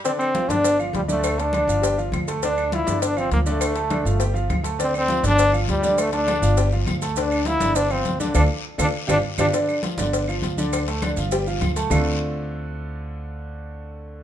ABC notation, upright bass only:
X:1
M:4/4
L:1/8
Q:1/4=202
K:Gdor
V:1 name="Upright bass" clef=bass
z3 G,,,3 D,,2- | D,,3 G,,,3 D,,2- | D,,3 G,,,3 D,,2- | D,,3 G,,,3 D,,2- |
D,,3 G,,,3 D,,2- | D,,3 G,,,3 D,,2- | D,,3 G,,,3 D,,2 | D,, z2 D,, z G,,, z G,,, |
z3 G,,,3 D,,2- | D,,3 G,,,3 D,,2 | D,,8- | D,,8 |]